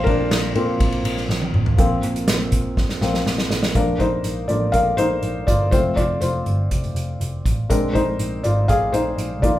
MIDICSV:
0, 0, Header, 1, 5, 480
1, 0, Start_track
1, 0, Key_signature, -2, "major"
1, 0, Tempo, 493016
1, 1739, Time_signature, 4, 2, 24, 8
1, 9338, End_track
2, 0, Start_track
2, 0, Title_t, "Felt piano"
2, 0, Program_c, 0, 0
2, 0, Control_c, 0, 64, 127
2, 0, Note_on_c, 0, 58, 44
2, 0, Note_on_c, 0, 60, 39
2, 0, Note_on_c, 0, 65, 80
2, 0, Note_on_c, 0, 70, 81
2, 0, Note_on_c, 0, 72, 100
2, 0, Note_on_c, 0, 77, 96
2, 0, Note_on_c, 0, 79, 101
2, 36, Note_off_c, 0, 70, 0
2, 36, Note_on_c, 0, 70, 89
2, 68, Note_on_c, 0, 62, 62
2, 494, Note_off_c, 0, 70, 0
2, 511, Note_off_c, 0, 62, 0
2, 533, Note_off_c, 0, 58, 0
2, 533, Note_on_c, 0, 58, 57
2, 540, Note_off_c, 0, 60, 0
2, 540, Note_on_c, 0, 60, 49
2, 547, Note_off_c, 0, 65, 0
2, 547, Note_on_c, 0, 65, 57
2, 1219, Note_off_c, 0, 58, 0
2, 1223, Note_off_c, 0, 60, 0
2, 1227, Note_off_c, 0, 65, 0
2, 1732, Note_on_c, 0, 53, 60
2, 1740, Note_on_c, 0, 58, 52
2, 1742, Note_on_c, 0, 60, 62
2, 1751, Control_c, 0, 64, 0
2, 1753, Note_off_c, 0, 72, 0
2, 1753, Note_off_c, 0, 77, 0
2, 1754, Note_off_c, 0, 79, 0
2, 1940, Control_c, 0, 64, 127
2, 2418, Note_off_c, 0, 53, 0
2, 2422, Note_off_c, 0, 58, 0
2, 2424, Note_off_c, 0, 60, 0
2, 2933, Note_on_c, 0, 53, 46
2, 2938, Note_on_c, 0, 58, 41
2, 2941, Note_on_c, 0, 60, 52
2, 3151, Note_off_c, 0, 53, 0
2, 3153, Note_off_c, 0, 58, 0
2, 3155, Note_off_c, 0, 60, 0
2, 3653, Note_on_c, 0, 53, 44
2, 3653, Note_on_c, 0, 70, 75
2, 3658, Note_on_c, 0, 58, 42
2, 3663, Note_on_c, 0, 62, 53
2, 3667, Control_c, 0, 64, 0
2, 3829, Control_c, 0, 64, 127
2, 3883, Note_off_c, 0, 62, 0
2, 3886, Note_on_c, 0, 72, 72
2, 3901, Note_on_c, 0, 63, 53
2, 3902, Note_off_c, 0, 70, 0
2, 4346, Note_off_c, 0, 63, 0
2, 4353, Note_off_c, 0, 53, 0
2, 4353, Note_off_c, 0, 58, 0
2, 4360, Note_on_c, 0, 74, 62
2, 4368, Note_on_c, 0, 53, 32
2, 4368, Note_on_c, 0, 58, 32
2, 4373, Note_on_c, 0, 62, 34
2, 4379, Note_on_c, 0, 65, 49
2, 4386, Note_off_c, 0, 72, 0
2, 4588, Note_off_c, 0, 53, 0
2, 4588, Note_off_c, 0, 58, 0
2, 4591, Note_off_c, 0, 62, 0
2, 4595, Note_on_c, 0, 77, 83
2, 4601, Note_off_c, 0, 65, 0
2, 4613, Note_on_c, 0, 70, 68
2, 4616, Note_off_c, 0, 74, 0
2, 4838, Note_off_c, 0, 70, 0
2, 4840, Note_on_c, 0, 72, 88
2, 4854, Note_off_c, 0, 77, 0
2, 4857, Note_on_c, 0, 63, 60
2, 5304, Note_off_c, 0, 63, 0
2, 5323, Note_on_c, 0, 74, 69
2, 5341, Note_on_c, 0, 65, 55
2, 5344, Note_off_c, 0, 72, 0
2, 5562, Note_on_c, 0, 72, 73
2, 5563, Note_off_c, 0, 65, 0
2, 5569, Note_on_c, 0, 53, 41
2, 5576, Note_on_c, 0, 57, 39
2, 5578, Note_off_c, 0, 74, 0
2, 5580, Note_on_c, 0, 65, 54
2, 5581, Note_on_c, 0, 60, 55
2, 5592, Control_c, 0, 64, 0
2, 5761, Control_c, 0, 64, 127
2, 5803, Note_off_c, 0, 65, 0
2, 5804, Note_on_c, 0, 74, 66
2, 5818, Note_off_c, 0, 72, 0
2, 5827, Note_on_c, 0, 65, 55
2, 6034, Note_off_c, 0, 74, 0
2, 6042, Note_on_c, 0, 72, 59
2, 6047, Note_off_c, 0, 65, 0
2, 6064, Note_on_c, 0, 65, 50
2, 7213, Note_off_c, 0, 72, 0
2, 7224, Note_off_c, 0, 65, 0
2, 7457, Note_off_c, 0, 53, 0
2, 7461, Note_off_c, 0, 57, 0
2, 7463, Note_off_c, 0, 60, 0
2, 7492, Note_on_c, 0, 62, 56
2, 7494, Note_on_c, 0, 70, 77
2, 7497, Note_on_c, 0, 56, 44
2, 7500, Note_on_c, 0, 60, 50
2, 7514, Control_c, 0, 64, 0
2, 7654, Control_c, 0, 64, 127
2, 7725, Note_on_c, 0, 72, 76
2, 7726, Note_off_c, 0, 62, 0
2, 7738, Note_on_c, 0, 63, 62
2, 7745, Note_off_c, 0, 70, 0
2, 8183, Note_off_c, 0, 56, 0
2, 8185, Note_off_c, 0, 60, 0
2, 8186, Note_off_c, 0, 63, 0
2, 8212, Note_on_c, 0, 74, 61
2, 8228, Note_off_c, 0, 72, 0
2, 8228, Note_on_c, 0, 65, 55
2, 8448, Note_off_c, 0, 65, 0
2, 8453, Note_on_c, 0, 77, 83
2, 8464, Note_off_c, 0, 74, 0
2, 8467, Note_on_c, 0, 68, 71
2, 8688, Note_off_c, 0, 68, 0
2, 8689, Note_on_c, 0, 72, 70
2, 8705, Note_off_c, 0, 77, 0
2, 8706, Note_on_c, 0, 63, 57
2, 9141, Note_off_c, 0, 72, 0
2, 9150, Note_off_c, 0, 63, 0
2, 9173, Note_on_c, 0, 74, 65
2, 9175, Note_on_c, 0, 53, 40
2, 9181, Note_on_c, 0, 58, 41
2, 9186, Note_on_c, 0, 63, 43
2, 9189, Note_on_c, 0, 65, 60
2, 9196, Control_c, 0, 64, 0
2, 9338, Note_off_c, 0, 53, 0
2, 9338, Note_off_c, 0, 58, 0
2, 9338, Note_off_c, 0, 63, 0
2, 9338, Note_off_c, 0, 65, 0
2, 9338, Note_off_c, 0, 74, 0
2, 9338, End_track
3, 0, Start_track
3, 0, Title_t, "Tonewheel organ"
3, 0, Program_c, 1, 16
3, 0, Note_on_c, 1, 46, 68
3, 0, Note_on_c, 1, 53, 68
3, 0, Note_on_c, 1, 60, 91
3, 1695, Note_off_c, 1, 53, 0
3, 1699, Note_off_c, 1, 60, 0
3, 1701, Note_off_c, 1, 46, 0
3, 1742, Note_on_c, 1, 60, 73
3, 1743, Note_on_c, 1, 53, 67
3, 1748, Note_on_c, 1, 58, 60
3, 3639, Note_off_c, 1, 60, 0
3, 3640, Note_off_c, 1, 53, 0
3, 3642, Note_off_c, 1, 58, 0
3, 9338, End_track
4, 0, Start_track
4, 0, Title_t, "Picked electric bass"
4, 0, Program_c, 2, 34
4, 65, Note_on_c, 2, 34, 100
4, 261, Note_off_c, 2, 34, 0
4, 300, Note_on_c, 2, 34, 88
4, 498, Note_off_c, 2, 34, 0
4, 540, Note_on_c, 2, 46, 94
4, 737, Note_off_c, 2, 46, 0
4, 781, Note_on_c, 2, 34, 114
4, 978, Note_off_c, 2, 34, 0
4, 1021, Note_on_c, 2, 34, 96
4, 1217, Note_off_c, 2, 34, 0
4, 1259, Note_on_c, 2, 34, 84
4, 1456, Note_off_c, 2, 34, 0
4, 1504, Note_on_c, 2, 33, 82
4, 1698, Note_off_c, 2, 33, 0
4, 1738, Note_on_c, 2, 34, 96
4, 1935, Note_off_c, 2, 34, 0
4, 1979, Note_on_c, 2, 34, 97
4, 2175, Note_off_c, 2, 34, 0
4, 2221, Note_on_c, 2, 34, 78
4, 2416, Note_off_c, 2, 34, 0
4, 2460, Note_on_c, 2, 34, 89
4, 2754, Note_off_c, 2, 34, 0
4, 2933, Note_on_c, 2, 34, 79
4, 3131, Note_off_c, 2, 34, 0
4, 3174, Note_on_c, 2, 34, 85
4, 3372, Note_off_c, 2, 34, 0
4, 3415, Note_on_c, 2, 34, 72
4, 3613, Note_off_c, 2, 34, 0
4, 3653, Note_on_c, 2, 34, 82
4, 3851, Note_off_c, 2, 34, 0
4, 3892, Note_on_c, 2, 34, 64
4, 4091, Note_off_c, 2, 34, 0
4, 4134, Note_on_c, 2, 34, 86
4, 4332, Note_off_c, 2, 34, 0
4, 4376, Note_on_c, 2, 33, 69
4, 4574, Note_off_c, 2, 33, 0
4, 4613, Note_on_c, 2, 34, 82
4, 4812, Note_off_c, 2, 34, 0
4, 4853, Note_on_c, 2, 34, 71
4, 5052, Note_off_c, 2, 34, 0
4, 5094, Note_on_c, 2, 34, 78
4, 5292, Note_off_c, 2, 34, 0
4, 5333, Note_on_c, 2, 31, 58
4, 5532, Note_off_c, 2, 31, 0
4, 5572, Note_on_c, 2, 29, 78
4, 5772, Note_off_c, 2, 29, 0
4, 5813, Note_on_c, 2, 29, 75
4, 6012, Note_off_c, 2, 29, 0
4, 6055, Note_on_c, 2, 29, 80
4, 6254, Note_off_c, 2, 29, 0
4, 6294, Note_on_c, 2, 31, 68
4, 6493, Note_off_c, 2, 31, 0
4, 6535, Note_on_c, 2, 29, 81
4, 6734, Note_off_c, 2, 29, 0
4, 6767, Note_on_c, 2, 29, 78
4, 6969, Note_off_c, 2, 29, 0
4, 7015, Note_on_c, 2, 29, 84
4, 7214, Note_off_c, 2, 29, 0
4, 7259, Note_on_c, 2, 33, 62
4, 7456, Note_off_c, 2, 33, 0
4, 7499, Note_on_c, 2, 34, 80
4, 7696, Note_off_c, 2, 34, 0
4, 7743, Note_on_c, 2, 34, 85
4, 7939, Note_off_c, 2, 34, 0
4, 7983, Note_on_c, 2, 34, 79
4, 8179, Note_off_c, 2, 34, 0
4, 8227, Note_on_c, 2, 32, 73
4, 8421, Note_off_c, 2, 32, 0
4, 8464, Note_on_c, 2, 34, 85
4, 8660, Note_off_c, 2, 34, 0
4, 8696, Note_on_c, 2, 34, 64
4, 8895, Note_off_c, 2, 34, 0
4, 8937, Note_on_c, 2, 34, 69
4, 9181, Note_off_c, 2, 34, 0
4, 9181, Note_on_c, 2, 39, 73
4, 9338, Note_off_c, 2, 39, 0
4, 9338, End_track
5, 0, Start_track
5, 0, Title_t, "Drums"
5, 64, Note_on_c, 9, 36, 77
5, 65, Note_on_c, 9, 51, 49
5, 162, Note_off_c, 9, 36, 0
5, 162, Note_off_c, 9, 51, 0
5, 304, Note_on_c, 9, 38, 112
5, 304, Note_on_c, 9, 51, 77
5, 402, Note_off_c, 9, 38, 0
5, 402, Note_off_c, 9, 51, 0
5, 540, Note_on_c, 9, 51, 54
5, 637, Note_off_c, 9, 51, 0
5, 782, Note_on_c, 9, 36, 92
5, 783, Note_on_c, 9, 51, 85
5, 880, Note_off_c, 9, 36, 0
5, 880, Note_off_c, 9, 51, 0
5, 900, Note_on_c, 9, 51, 46
5, 997, Note_off_c, 9, 51, 0
5, 1022, Note_on_c, 9, 51, 75
5, 1120, Note_off_c, 9, 51, 0
5, 1141, Note_on_c, 9, 38, 36
5, 1238, Note_off_c, 9, 38, 0
5, 1262, Note_on_c, 9, 38, 67
5, 1359, Note_off_c, 9, 38, 0
5, 1378, Note_on_c, 9, 48, 63
5, 1475, Note_off_c, 9, 48, 0
5, 1499, Note_on_c, 9, 45, 97
5, 1596, Note_off_c, 9, 45, 0
5, 1619, Note_on_c, 9, 43, 88
5, 1716, Note_off_c, 9, 43, 0
5, 1737, Note_on_c, 9, 42, 75
5, 1739, Note_on_c, 9, 36, 104
5, 1834, Note_off_c, 9, 42, 0
5, 1836, Note_off_c, 9, 36, 0
5, 1977, Note_on_c, 9, 42, 60
5, 2074, Note_off_c, 9, 42, 0
5, 2102, Note_on_c, 9, 42, 57
5, 2199, Note_off_c, 9, 42, 0
5, 2216, Note_on_c, 9, 38, 112
5, 2216, Note_on_c, 9, 42, 84
5, 2314, Note_off_c, 9, 38, 0
5, 2314, Note_off_c, 9, 42, 0
5, 2452, Note_on_c, 9, 42, 67
5, 2458, Note_on_c, 9, 36, 74
5, 2550, Note_off_c, 9, 42, 0
5, 2555, Note_off_c, 9, 36, 0
5, 2699, Note_on_c, 9, 36, 76
5, 2699, Note_on_c, 9, 38, 55
5, 2796, Note_off_c, 9, 36, 0
5, 2796, Note_off_c, 9, 38, 0
5, 2817, Note_on_c, 9, 38, 48
5, 2914, Note_off_c, 9, 38, 0
5, 2934, Note_on_c, 9, 38, 66
5, 3032, Note_off_c, 9, 38, 0
5, 3058, Note_on_c, 9, 38, 60
5, 3155, Note_off_c, 9, 38, 0
5, 3176, Note_on_c, 9, 38, 84
5, 3274, Note_off_c, 9, 38, 0
5, 3294, Note_on_c, 9, 38, 72
5, 3391, Note_off_c, 9, 38, 0
5, 3413, Note_on_c, 9, 38, 83
5, 3510, Note_off_c, 9, 38, 0
5, 3531, Note_on_c, 9, 38, 88
5, 3628, Note_off_c, 9, 38, 0
5, 3651, Note_on_c, 9, 42, 62
5, 3654, Note_on_c, 9, 36, 76
5, 3749, Note_off_c, 9, 42, 0
5, 3751, Note_off_c, 9, 36, 0
5, 3891, Note_on_c, 9, 42, 41
5, 3894, Note_on_c, 9, 36, 56
5, 3989, Note_off_c, 9, 42, 0
5, 3991, Note_off_c, 9, 36, 0
5, 4128, Note_on_c, 9, 42, 70
5, 4226, Note_off_c, 9, 42, 0
5, 4369, Note_on_c, 9, 42, 48
5, 4466, Note_off_c, 9, 42, 0
5, 4611, Note_on_c, 9, 42, 69
5, 4613, Note_on_c, 9, 36, 65
5, 4708, Note_off_c, 9, 42, 0
5, 4711, Note_off_c, 9, 36, 0
5, 4849, Note_on_c, 9, 42, 64
5, 4946, Note_off_c, 9, 42, 0
5, 5088, Note_on_c, 9, 42, 57
5, 5185, Note_off_c, 9, 42, 0
5, 5333, Note_on_c, 9, 36, 75
5, 5334, Note_on_c, 9, 42, 62
5, 5430, Note_off_c, 9, 36, 0
5, 5431, Note_off_c, 9, 42, 0
5, 5571, Note_on_c, 9, 42, 68
5, 5573, Note_on_c, 9, 36, 93
5, 5669, Note_off_c, 9, 42, 0
5, 5670, Note_off_c, 9, 36, 0
5, 5813, Note_on_c, 9, 42, 45
5, 5814, Note_on_c, 9, 36, 66
5, 5911, Note_off_c, 9, 42, 0
5, 5912, Note_off_c, 9, 36, 0
5, 6051, Note_on_c, 9, 42, 70
5, 6148, Note_off_c, 9, 42, 0
5, 6291, Note_on_c, 9, 42, 49
5, 6388, Note_off_c, 9, 42, 0
5, 6534, Note_on_c, 9, 42, 69
5, 6537, Note_on_c, 9, 36, 64
5, 6632, Note_off_c, 9, 42, 0
5, 6634, Note_off_c, 9, 36, 0
5, 6656, Note_on_c, 9, 42, 39
5, 6753, Note_off_c, 9, 42, 0
5, 6777, Note_on_c, 9, 42, 66
5, 6875, Note_off_c, 9, 42, 0
5, 7019, Note_on_c, 9, 42, 62
5, 7116, Note_off_c, 9, 42, 0
5, 7258, Note_on_c, 9, 36, 81
5, 7261, Note_on_c, 9, 42, 72
5, 7356, Note_off_c, 9, 36, 0
5, 7358, Note_off_c, 9, 42, 0
5, 7500, Note_on_c, 9, 36, 76
5, 7501, Note_on_c, 9, 42, 66
5, 7597, Note_off_c, 9, 36, 0
5, 7598, Note_off_c, 9, 42, 0
5, 7742, Note_on_c, 9, 36, 55
5, 7744, Note_on_c, 9, 42, 46
5, 7839, Note_off_c, 9, 36, 0
5, 7841, Note_off_c, 9, 42, 0
5, 7977, Note_on_c, 9, 42, 71
5, 8075, Note_off_c, 9, 42, 0
5, 8219, Note_on_c, 9, 42, 57
5, 8316, Note_off_c, 9, 42, 0
5, 8461, Note_on_c, 9, 42, 75
5, 8462, Note_on_c, 9, 36, 65
5, 8559, Note_off_c, 9, 36, 0
5, 8559, Note_off_c, 9, 42, 0
5, 8701, Note_on_c, 9, 42, 68
5, 8798, Note_off_c, 9, 42, 0
5, 8941, Note_on_c, 9, 42, 63
5, 9039, Note_off_c, 9, 42, 0
5, 9182, Note_on_c, 9, 36, 76
5, 9186, Note_on_c, 9, 42, 73
5, 9279, Note_off_c, 9, 36, 0
5, 9283, Note_off_c, 9, 42, 0
5, 9338, End_track
0, 0, End_of_file